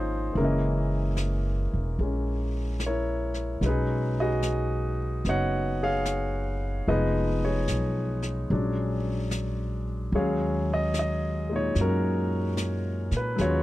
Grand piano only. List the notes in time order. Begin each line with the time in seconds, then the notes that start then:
Already playing: F3 G#3 A#3 C#4 D#4 F4 G#4 C5 C#5 D#5
0.33 E3
0.37 G#3 A#3 C#4 E4 A#4
0.45 D#5
2.00 G#3 C#4
2.86 E4 A#4 C#5
3.62 F#3 G#3 C#4 D#4
3.66 D#4 G#4 B4
4.20 F#4 G#4 D#5
5.26 B3 D#4 F#4 C#5 D#5 F#5
5.83 G#4 C#5 F5
6.88 F3 G#3 B3 D#4 G#4 B4 D#5
7.45 G#4 C#5
8.51 F#3 G#3 C#4 D4
10.15 F#3 G#3 C#4 G#4 C#5 F5
10.74 D#5
10.99 D#5
11.49 A#2 G#3 D#4
11.56 C#5
11.81 C#4 F#4 A#4
13.17 B4
13.36 F#3 G#3 C#4
13.41 F4 F#4 C#5 F5